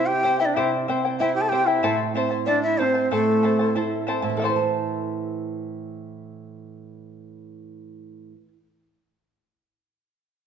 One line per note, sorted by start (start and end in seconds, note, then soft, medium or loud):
0.00 0.52 C3 medium
0.00 0.22 E4 medium
0.00 0.23 E4 medium
0.00 0.23 C5 medium
0.00 0.22 E5 medium
0.00 0.23 G5 medium
0.07 0.40 G4 medium
0.07 0.39 G5 medium
0.23 0.55 C4 soft
0.23 0.39 E4 medium
0.23 0.39 C5 medium
0.23 0.39 E5 medium
0.23 0.38 G5 medium
0.40 0.48 E4 medium
0.40 0.56 E4 soft
0.40 0.56 C5 soft
0.40 0.47 E5 medium
0.40 0.55 G5 soft
0.45 0.57 D4 medium
0.45 0.56 D5 medium
0.54 1.80 C3 medium
0.54 0.72 E4 medium
0.54 0.87 E4 medium
0.54 0.88 G4 medium
0.54 0.88 C5 medium
0.54 0.72 E5 medium
0.54 0.87 E5 medium
0.54 0.88 G5 medium
0.88 1.19 C4 soft
0.88 1.04 E4 medium
0.88 1.04 C5 medium
0.88 1.04 E5 medium
0.88 1.03 G5 medium
1.05 1.19 E4 soft
1.05 1.20 C5 soft
1.05 1.20 G5 medium
1.20 1.51 E4 medium
1.20 1.35 E4 medium
1.20 1.51 C5 medium
1.20 1.34 E5 medium
1.20 1.51 E5 medium
1.20 1.52 G5 medium
1.35 1.44 G4 medium
1.35 1.42 G5 medium
1.41 1.50 A4 medium
1.41 1.51 A5 medium
1.49 1.82 C4 soft
1.49 1.67 E4 medium
1.49 1.68 G4 medium
1.49 1.66 C5 medium
1.49 1.68 E5 medium
1.49 1.68 G5 medium
1.53 1.66 G5 medium
1.67 1.99 E4 medium
1.67 1.82 E4 soft
1.67 1.83 C5 soft
1.67 1.99 E5 medium
1.67 1.83 G5 medium
1.83 3.07 A2 medium
1.83 2.14 E4 medium
1.83 2.15 A4 medium
1.83 2.15 C5 medium
1.83 2.14 E5 medium
1.83 2.16 A5 medium
2.15 2.46 C4 soft
2.15 2.31 E4 medium
2.15 2.30 C5 medium
2.15 2.31 E5 medium
2.15 2.29 A5 medium
2.31 2.46 E4 soft
2.31 2.46 C5 soft
2.31 2.47 A5 soft
2.46 2.63 D4 medium
2.46 2.78 E4 medium
2.46 2.78 C5 medium
2.46 2.62 D5 medium
2.46 2.77 E5 medium
2.46 2.79 A5 medium
2.63 2.84 E4 medium
2.63 2.81 E5 medium
2.78 3.10 C4 soft
2.78 2.94 E4 medium
2.78 2.94 C5 medium
2.78 3.11 C5 medium
2.78 2.95 E5 medium
2.78 2.93 A5 medium
2.83 3.13 C4 medium
2.94 3.11 E4 soft
2.94 3.11 C5 soft
2.94 3.11 A5 medium
3.11 4.21 A2 medium
3.11 3.43 E4 medium
3.11 3.43 A4 medium
3.11 3.72 A4 medium
3.11 3.43 C5 medium
3.11 3.42 E5 medium
3.11 3.43 A5 medium
3.16 3.73 A3 medium
3.43 3.74 C4 soft
3.43 3.59 E4 medium
3.43 3.59 C5 medium
3.43 3.59 E5 medium
3.43 3.58 A5 medium
3.59 3.75 E4 soft
3.59 3.75 C5 soft
3.59 3.75 A5 soft
3.75 4.06 E4 soft
3.75 4.07 E4 medium
3.75 4.07 C5 medium
3.75 4.06 E5 medium
3.75 4.07 A5 medium
4.07 4.38 C4 soft
4.07 4.23 E4 medium
4.07 4.22 C5 medium
4.07 4.23 E5 medium
4.07 4.21 A5 medium
4.22 8.32 A2 medium
4.22 4.40 E4 soft
4.22 4.39 C5 medium
4.22 4.39 A5 medium
4.29 8.36 E3 soft
4.37 4.56 E4 soft
4.37 8.44 A4 medium
4.37 4.45 E5 medium
4.42 8.46 E4 medium
4.42 8.42 A4 soft
4.42 8.47 C5 medium
4.42 8.48 A5 medium
4.50 8.46 C5 soft
4.56 8.49 A5 medium